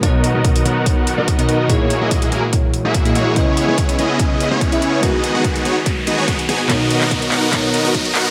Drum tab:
HH |x-x-xxx-x-x-xxx-|x-x-xxx-x-x-xxx-|x-x-xxx-x-x-xxx-|x-x-xxx-x-x-xxx-|
CP |----------------|----------------|----------------|----------------|
BD |o---o---o---o---|o---o---o---o---|o---o---o---o---|o---o---o---o---|

HH |x-x-xxx-x-x-xxx-|
CP |x--x--x-x-----x-|
BD |o---o---o---o---|